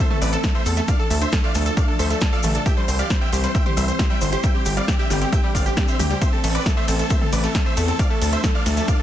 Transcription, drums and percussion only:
0.11 mid tom medium
0.22 open hi-hat loud
0.22 shaker medium
0.33 closed hi-hat medium
0.33 shaker soft
0.43 kick loud
0.43 snare loud
0.43 closed hi-hat medium
0.43 shaker soft
0.66 open hi-hat medium
0.66 shaker loud
0.77 closed hi-hat medium
0.77 shaker soft
0.88 kick loud
0.88 closed hi-hat medium
0.88 shaker medium
1.10 open hi-hat loud
1.10 shaker medium
1.22 closed hi-hat medium
1.22 shaker soft
1.32 kick loud
1.32 snare loud
1.32 closed hi-hat medium
1.32 shaker medium
1.55 snare soft
1.55 open hi-hat loud
1.55 shaker loud
1.66 closed hi-hat medium
1.66 shaker soft
1.77 kick loud
1.77 closed hi-hat medium
1.77 shaker medium
1.99 open hi-hat loud
1.99 shaker medium
2.10 closed hi-hat medium
2.10 shaker soft
2.21 kick loud
2.21 snare loud
2.21 closed hi-hat medium
2.21 shaker medium
2.43 open hi-hat medium
2.43 mid tom medium
2.43 shaker loud
2.54 closed hi-hat medium
2.54 shaker soft
2.66 kick loud
2.66 closed hi-hat medium
2.66 shaker medium
2.88 open hi-hat loud
2.88 shaker loud
2.99 closed hi-hat medium
2.99 shaker soft
3.10 kick loud
3.10 snare loud
3.10 closed hi-hat medium
3.10 shaker medium
3.33 open hi-hat loud
3.33 shaker loud
3.44 closed hi-hat medium
3.44 shaker soft
3.55 kick loud
3.55 closed hi-hat medium
3.55 shaker medium
3.66 mid tom medium
3.77 open hi-hat loud
3.77 shaker medium
3.88 closed hi-hat medium
3.88 shaker soft
3.99 kick loud
3.99 snare loud
3.99 closed hi-hat medium
3.99 shaker medium
4.21 open hi-hat loud
4.21 shaker loud
4.32 closed hi-hat medium
4.32 shaker soft
4.43 kick loud
4.43 closed hi-hat medium
4.43 shaker medium
4.65 open hi-hat loud
4.65 shaker loud
4.77 closed hi-hat medium
4.77 shaker soft
4.88 kick loud
4.88 snare loud
4.88 closed hi-hat medium
4.88 shaker medium
5.11 snare soft
5.11 open hi-hat loud
5.11 shaker medium
5.21 closed hi-hat medium
5.21 shaker soft
5.33 kick loud
5.33 closed hi-hat medium
5.33 shaker medium
5.55 kick medium
5.55 open hi-hat loud
5.55 shaker loud
5.66 closed hi-hat medium
5.66 shaker soft
5.77 kick loud
5.77 snare loud
5.77 closed hi-hat medium
5.77 shaker medium
5.88 shaker soft
5.99 open hi-hat loud
5.99 mid tom medium
5.99 shaker loud
6.10 closed hi-hat medium
6.10 shaker soft
6.21 kick loud
6.21 closed hi-hat medium
6.21 ride medium
6.21 shaker medium
6.44 open hi-hat loud
6.44 ride medium
6.44 shaker medium
6.55 closed hi-hat medium
6.55 shaker soft
6.66 kick loud
6.66 snare loud
6.66 closed hi-hat medium
6.66 ride medium
6.66 shaker medium
6.88 open hi-hat medium
6.88 ride medium
6.88 shaker loud
6.99 closed hi-hat medium
6.99 shaker soft
7.10 kick loud
7.10 closed hi-hat medium
7.10 ride medium
7.10 shaker medium
7.22 mid tom medium
7.33 open hi-hat loud
7.33 ride medium
7.33 shaker loud
7.44 closed hi-hat medium
7.44 shaker soft
7.55 kick loud
7.55 snare loud
7.55 closed hi-hat medium
7.55 ride medium
7.55 shaker medium
7.77 open hi-hat medium
7.77 ride medium
7.77 shaker medium
7.88 closed hi-hat medium
7.88 shaker soft
7.99 kick loud
7.99 closed hi-hat medium
7.99 ride medium
7.99 shaker medium
8.22 open hi-hat loud
8.22 ride medium
8.22 shaker medium
8.33 closed hi-hat medium
8.33 shaker soft
8.44 kick loud
8.44 snare loud
8.44 closed hi-hat medium
8.44 ride medium
8.44 shaker soft
8.66 snare soft
8.66 open hi-hat medium
8.66 ride medium
8.66 shaker medium
8.77 closed hi-hat medium
8.77 shaker soft
8.88 kick loud
8.88 closed hi-hat medium
8.88 ride medium
8.88 shaker medium

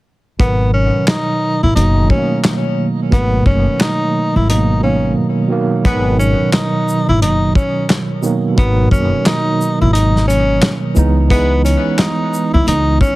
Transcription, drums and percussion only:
0.40 kick loud
0.40 closed hi-hat medium
1.07 snare loud
1.07 clap medium
1.07 closed hi-hat medium
1.77 closed hi-hat medium
2.10 kick loud
2.44 snare loud
2.44 clap medium
2.44 closed hi-hat medium
3.12 kick loud
3.12 closed hi-hat medium
3.46 kick medium
3.80 snare loud
3.80 clap medium
3.80 closed hi-hat medium
4.50 closed hi-hat medium
5.85 kick loud
5.85 closed hi-hat medium
6.20 shaker medium
6.53 snare loud
6.53 clap medium
6.53 closed hi-hat medium
6.89 shaker medium
7.22 closed hi-hat medium
7.55 kick loud
7.55 shaker soft
7.90 snare loud
7.90 clap medium
7.90 closed hi-hat medium
8.23 shaker medium
8.58 kick loud
8.58 closed hi-hat medium
8.91 kick medium
8.91 shaker medium
9.26 snare loud
9.26 clap medium
9.26 closed hi-hat medium
9.61 shaker medium
9.95 closed hi-hat medium
10.16 snare soft
10.30 closed hi-hat soft
10.30 shaker soft
10.62 snare loud
10.62 clap loud
10.62 closed hi-hat medium
10.96 shaker medium
11.30 kick loud
11.30 closed hi-hat medium
11.66 closed hi-hat medium
11.66 shaker medium
11.98 snare loud
11.98 clap medium
11.98 closed hi-hat medium
12.34 shaker medium
12.68 closed hi-hat medium
13.01 kick loud
13.01 shaker soft

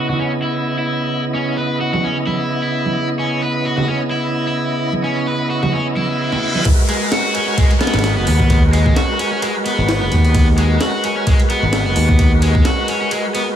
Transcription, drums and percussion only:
0.09 low conga medium
1.93 high conga medium
1.93 low conga medium
2.27 high conga medium
2.86 high conga medium
3.77 low conga medium
4.93 high conga medium
5.63 high conga medium
5.63 low conga medium
5.96 high conga medium
6.32 low conga medium
6.55 high conga medium
6.65 kick loud
6.65 ride medium
6.89 ride medium
7.12 snare loud
7.12 ride medium
7.35 ride medium
7.58 kick loud
7.58 ride medium
7.71 ride soft
7.81 snare medium
7.81 ride medium
7.87 snare medium
7.87 ride medium
7.94 snare medium
7.94 ride medium
7.99 snare medium
7.99 ride medium
8.04 snare loud
8.04 ride medium
8.27 open hi-hat medium
8.40 kick loud
8.50 kick loud
8.50 ride medium
8.73 ride medium
8.86 kick loud
8.96 snare loud
8.96 ride medium
9.19 ride medium
9.42 ride medium
9.66 ride medium
9.89 snare loud
9.89 ride medium
10.12 kick medium
10.12 ride medium
10.24 ride soft
10.35 kick loud
10.35 ride medium
10.58 ride medium
10.81 snare loud
10.81 ride medium
11.04 ride medium
11.27 kick loud
11.27 ride medium
11.40 ride soft
11.50 ride medium
11.73 snare loud
11.73 ride medium
11.96 open hi-hat medium
12.09 kick loud
12.19 kick loud
12.19 ride medium
12.42 ride medium
12.55 kick loud
12.65 snare loud
12.65 ride medium
12.88 ride medium
13.11 ride medium
13.35 ride medium

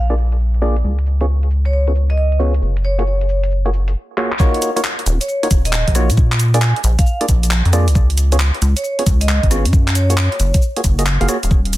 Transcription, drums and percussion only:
0.10 closed hi-hat soft
0.17 cabasa medium
0.32 closed hi-hat medium
0.32 cabasa soft
0.40 cabasa soft
0.54 closed hi-hat soft
0.62 cabasa medium
0.76 closed hi-hat medium
0.76 cabasa soft
0.84 cabasa soft
0.99 closed hi-hat soft
1.06 cabasa medium
1.21 closed hi-hat medium
1.21 cabasa soft
1.28 cabasa soft
1.43 closed hi-hat soft
1.50 cabasa medium
1.65 closed hi-hat medium
1.65 cabasa soft
1.73 cabasa soft
1.87 closed hi-hat soft
1.95 cabasa medium
2.10 closed hi-hat medium
2.10 cabasa soft
2.17 cabasa soft
2.32 closed hi-hat soft
2.40 cabasa medium
2.54 closed hi-hat medium
2.54 cabasa soft
2.62 cabasa soft
2.77 closed hi-hat soft
2.84 cabasa medium
2.99 closed hi-hat medium
2.99 cabasa soft
3.07 cabasa soft
3.21 closed hi-hat soft
3.29 cabasa medium
3.43 closed hi-hat medium
3.43 cabasa soft
3.51 cabasa soft
3.66 closed hi-hat soft
3.73 cabasa medium
3.88 closed hi-hat medium
3.88 cabasa soft
4.18 clap medium
4.32 clap medium
4.40 kick loud
4.40 cabasa soft
4.54 closed hi-hat soft
4.62 closed hi-hat loud
4.62 cabasa medium
4.77 closed hi-hat medium
4.77 cabasa soft
4.84 clap loud
4.84 cabasa soft
4.99 closed hi-hat soft
5.06 closed hi-hat loud
5.06 cabasa medium
5.21 closed hi-hat medium
5.21 cabasa soft
5.29 cabasa soft
5.43 closed hi-hat medium
5.51 kick loud
5.51 closed hi-hat loud
5.51 cabasa medium
5.65 closed hi-hat medium
5.65 cabasa soft
5.73 clap loud
5.73 cabasa soft
5.88 kick medium
5.88 closed hi-hat medium
5.95 cross-stick medium
5.95 closed hi-hat loud
5.95 cabasa medium
6.10 closed hi-hat medium
6.10 cabasa soft
6.17 kick loud
6.17 cabasa soft
6.32 clap medium
6.32 closed hi-hat soft
6.40 closed hi-hat loud
6.40 cabasa medium
6.54 closed hi-hat medium
6.54 cabasa soft
6.62 clap loud
6.62 cabasa soft
6.76 closed hi-hat soft
6.84 closed hi-hat loud
6.84 cabasa medium
6.99 kick loud
6.99 closed hi-hat medium
6.99 cabasa soft
7.06 cabasa soft
7.21 closed hi-hat medium
7.29 kick medium
7.29 closed hi-hat loud
7.29 cabasa medium
7.43 closed hi-hat medium
7.43 cabasa soft
7.51 clap loud
7.51 cabasa soft
7.65 closed hi-hat soft
7.73 cross-stick medium
7.73 closed hi-hat loud
7.73 cabasa medium
7.88 closed hi-hat medium
7.88 cabasa soft
7.95 kick loud
7.95 cabasa soft
8.10 closed hi-hat soft
8.18 closed hi-hat loud
8.18 cabasa medium
8.32 closed hi-hat medium
8.32 cabasa soft
8.40 clap loud
8.40 cabasa soft
8.54 closed hi-hat soft
8.62 closed hi-hat medium
8.62 cabasa medium
8.77 closed hi-hat medium
8.77 cabasa soft
8.84 cabasa soft
8.99 closed hi-hat medium
9.06 kick loud
9.06 closed hi-hat loud
9.06 cabasa medium
9.21 closed hi-hat medium
9.21 cabasa soft
9.29 clap loud
9.29 cabasa soft
9.43 kick medium
9.43 closed hi-hat soft
9.51 cross-stick medium
9.51 closed hi-hat medium
9.51 cabasa medium
9.65 closed hi-hat medium
9.65 cabasa soft
9.73 kick loud
9.73 cabasa soft
9.88 clap medium
9.88 closed hi-hat soft
9.95 closed hi-hat loud
9.95 cabasa medium
10.10 closed hi-hat medium
10.10 cabasa soft
10.18 clap loud
10.18 cabasa soft
10.32 closed hi-hat soft
10.40 closed hi-hat medium
10.40 cabasa medium
10.54 kick loud
10.54 closed hi-hat medium
10.54 cabasa soft
10.62 cabasa soft
10.76 closed hi-hat medium
10.84 kick medium
10.84 closed hi-hat medium
10.84 cabasa medium
10.99 closed hi-hat medium
10.99 cabasa soft
11.06 clap loud
11.06 cabasa soft
11.21 closed hi-hat soft
11.29 cross-stick medium
11.29 closed hi-hat medium
11.29 cabasa medium
11.43 closed hi-hat medium
11.43 cabasa soft
11.51 kick loud
11.51 cabasa soft
11.65 closed hi-hat soft
11.73 closed hi-hat loud
11.73 cabasa medium

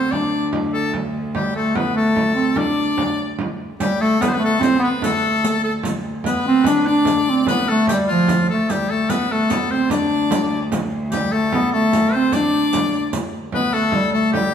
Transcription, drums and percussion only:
0.12 frame drum medium
0.53 frame drum medium
0.93 frame drum medium
1.16 frame drum soft
1.35 frame drum medium
1.75 frame drum medium
2.16 frame drum medium
2.37 frame drum soft
2.56 frame drum medium
2.98 frame drum medium
3.39 frame drum medium
3.60 frame drum soft
3.80 riq medium
3.80 frame drum medium
4.21 riq medium
4.21 frame drum medium
4.61 riq medium
4.61 frame drum medium
4.82 frame drum soft
5.02 riq medium
5.02 frame drum medium
5.44 riq medium
5.83 riq medium
5.83 frame drum medium
6.05 frame drum soft
6.24 riq medium
6.24 frame drum medium
6.64 riq medium
6.64 frame drum medium
7.05 riq medium
7.05 frame drum medium
7.27 frame drum soft
7.46 riq medium
7.46 frame drum medium
7.87 riq medium
7.87 frame drum medium
8.09 riq soft
8.28 riq medium
8.28 frame drum medium
8.49 frame drum soft
8.70 riq medium
8.70 frame drum medium
9.09 riq medium
9.09 frame drum medium
9.50 riq medium
9.50 frame drum medium
9.70 frame drum soft
9.90 riq medium
9.90 frame drum medium
10.31 riq medium
10.31 frame drum medium
10.72 riq medium
10.72 frame drum medium
10.92 frame drum soft
11.12 riq soft
11.12 frame drum medium
11.52 frame drum medium
11.93 riq medium
11.93 frame drum medium
12.13 frame drum soft
12.32 riq medium
12.32 frame drum medium
12.54 frame drum soft
12.73 riq medium
12.73 frame drum medium
12.93 riq soft
12.93 frame drum soft
13.13 riq medium
13.13 frame drum medium
13.33 frame drum soft
13.52 frame drum medium
13.74 frame drum soft
13.92 frame drum medium
14.34 frame drum medium

